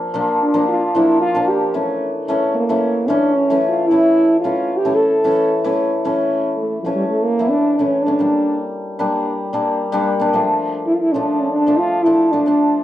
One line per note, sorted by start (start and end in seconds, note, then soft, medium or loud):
0.00 0.13 F3 medium
0.14 0.53 F3 medium
0.14 0.34 A#3 medium
0.14 0.35 D4 medium
0.43 0.67 D4 medium
0.54 0.94 F3 medium
0.54 0.74 A#3 medium
0.54 0.75 D4 medium
0.68 0.97 F4 medium
0.95 1.33 F3 medium
0.95 1.15 A#3 medium
0.95 1.16 D4 medium
0.95 1.20 E4 medium
1.21 1.50 F4 loud
1.35 1.80 F3 medium
1.35 1.55 A#3 medium
1.35 1.56 D4 medium
1.48 1.75 G4 medium
1.74 2.27 E3 medium
1.74 2.02 A3 medium
1.74 2.02 C#4 medium
2.28 2.68 E3 medium
2.28 2.49 A3 medium
2.28 2.50 C#4 medium
2.54 3.09 A#3 medium
2.69 3.07 E3 medium
2.69 2.90 A3 medium
2.69 2.90 C#4 medium
3.07 3.49 E3 medium
3.07 3.30 A3 medium
3.07 3.30 C#4 medium
3.07 3.36 D4 medium
3.34 3.62 C#4 medium
3.50 3.90 E3 medium
3.50 3.70 A3 medium
3.50 3.71 C#4 medium
3.69 3.89 F4 medium
3.87 4.43 E3 medium
3.87 4.40 E4 loud
3.92 4.18 A3 medium
3.92 4.18 C#4 medium
4.40 4.84 E3 medium
4.40 4.64 A3 medium
4.40 4.78 F4 medium
4.45 4.65 C#4 medium
4.77 4.97 G4 medium
4.85 5.23 E3 medium
4.85 5.05 A3 medium
4.85 5.05 C#4 medium
4.95 5.77 A4 medium
5.24 5.63 E3 medium
5.24 5.45 A3 medium
5.24 5.45 C#4 medium
5.64 6.03 E3 medium
5.64 5.85 A3 medium
5.64 5.85 C#4 medium
6.05 6.83 E3 medium
6.05 6.45 A3 medium
6.05 6.45 C#4 medium
6.57 6.82 A3 medium
6.82 7.38 E3 medium
6.82 6.95 F3 medium
6.82 7.13 A3 medium
6.82 7.13 C#4 medium
6.95 7.07 G3 medium
7.08 7.24 A3 medium
7.23 7.50 A#3 medium
7.39 7.78 E3 medium
7.39 7.59 A3 medium
7.39 7.60 E4 medium
7.49 7.77 D4 medium
7.76 8.24 E3 medium
7.76 8.03 C#4 medium
7.80 7.93 A3 medium
7.80 7.93 C#4 medium
8.02 8.58 D4 medium
8.06 8.13 A3 medium
8.06 8.14 C#4 medium
8.19 8.98 G3 medium
8.19 8.60 A#3 medium
8.19 8.60 D4 medium
8.99 9.52 G3 medium
8.99 9.26 A#3 medium
8.99 9.27 D4 medium
9.53 9.91 G3 medium
9.53 9.74 A#3 medium
9.53 9.74 D4 medium
9.92 10.38 G3 medium
9.92 10.06 A#3 medium
9.92 10.07 D4 medium
10.20 10.26 A#3 medium
10.20 10.27 D4 medium
10.33 11.13 F3 medium
10.33 10.74 A3 medium
10.33 10.74 D4 medium
10.87 10.95 E4 medium
10.94 11.02 F4 medium
11.01 11.14 E4 medium
11.12 11.65 F3 medium
11.12 11.41 A3 medium
11.12 11.27 C#4 medium
11.12 11.41 D4 medium
11.25 11.41 D4 medium
11.40 11.51 C#4 medium
11.52 11.79 D4 medium
11.67 12.05 F3 medium
11.67 11.87 A3 medium
11.67 11.87 D4 medium
11.77 12.04 F4 loud
12.03 12.45 F3 medium
12.03 12.20 A3 medium
12.03 12.20 D4 medium
12.03 12.33 E4 medium
12.31 12.40 A3 medium
12.31 12.84 D4 medium
12.31 12.40 D4 medium
12.46 12.84 F3 medium
12.46 12.84 A3 soft
12.46 12.84 D4 medium